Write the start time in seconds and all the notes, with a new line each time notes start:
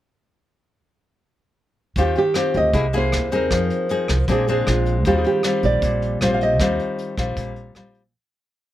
1.96 D#2 D#3 C4 F4 G4, kick, closed hi-hat
2.15 G4, closed hi-hat
2.34 C4 F4 G4, cross-stick, closed hi-hat
2.54 D2 D#5, closed hi-hat
2.73 C2 C3 A#3 E4 G#4, kick, closed hi-hat
2.93 A#3 E4 G#4, closed hi-hat
2.97 C5
3.12 D#2, cross-stick, closed hi-hat
3.31 C4 D#4 G#4 A#4, closed hi-hat
3.51 F2 F3, kick, cross-stick, closed hi-hat
3.70 closed hi-hat
3.89 C4 D#4 G#4, closed hi-hat
4.08 C2, cross-stick, closed hi-hat
4.28 A#1 A#2 G#3 C4 D4 G#4, kick, closed hi-hat
4.47 G#3 C4 D4 G#4, closed hi-hat
4.67 A#1 F4, cross-stick, closed hi-hat
4.86 closed hi-hat
5.05 D#2 D#3 G3 C4 F4 G4, kick, closed hi-hat
5.18 G#4
5.24 G4, closed hi-hat
5.43 G3 C4 F4, cross-stick, closed hi-hat
5.63 A#1 D5, closed hi-hat
5.82 A#1 A#2, kick, closed hi-hat
6.02 closed hi-hat
6.21 A#1 G3 C4 F4 C5, cross-stick, closed hi-hat
6.34 F5
6.41 D#5, closed hi-hat
6.60 D#2 D#3 G3 C4 F4, kick, cross-stick, closed hi-hat
6.79 closed hi-hat
6.99 closed hi-hat
7.18 A#1 G3 C4 F4, kick, cross-stick, closed hi-hat
7.37 A#1 A#2, kick, closed hi-hat
7.56 closed hi-hat
7.75 A#1 G3 C4 F4, cross-stick, closed hi-hat
7.94 closed hi-hat